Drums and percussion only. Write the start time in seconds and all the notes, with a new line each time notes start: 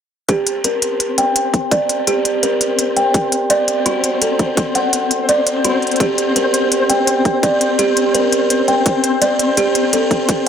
0.29 kick, closed hi-hat
0.47 closed hi-hat
0.64 closed hi-hat
0.82 closed hi-hat
1.00 closed hi-hat
1.18 closed hi-hat
1.36 closed hi-hat
1.54 kick, closed hi-hat
1.71 kick, closed hi-hat
1.89 closed hi-hat
2.07 closed hi-hat
2.25 closed hi-hat
2.43 closed hi-hat
2.61 closed hi-hat
2.79 closed hi-hat
2.97 closed hi-hat
3.14 kick, closed hi-hat
3.32 closed hi-hat
3.50 closed hi-hat
3.68 closed hi-hat
3.86 closed hi-hat
4.04 closed hi-hat
4.22 closed hi-hat
4.39 kick, closed hi-hat
4.57 kick, closed hi-hat
4.75 closed hi-hat
4.93 closed hi-hat
5.11 closed hi-hat
5.29 closed hi-hat
5.47 closed hi-hat
5.65 closed hi-hat
5.82 closed hi-hat
5.87 closed hi-hat
5.91 closed hi-hat
5.96 closed hi-hat
6.00 kick, closed hi-hat
6.18 closed hi-hat
6.36 closed hi-hat
6.54 closed hi-hat
6.72 closed hi-hat
6.90 closed hi-hat
7.07 closed hi-hat
7.25 kick, closed hi-hat
7.43 kick, closed hi-hat
7.61 closed hi-hat
7.79 closed hi-hat
7.97 closed hi-hat
8.15 closed hi-hat
8.32 closed hi-hat
8.50 closed hi-hat
8.68 closed hi-hat
8.86 kick, closed hi-hat
9.04 closed hi-hat
9.22 closed hi-hat
9.39 closed hi-hat
9.57 closed hi-hat
9.75 closed hi-hat
9.93 closed hi-hat
10.11 kick, closed hi-hat
10.29 kick, closed hi-hat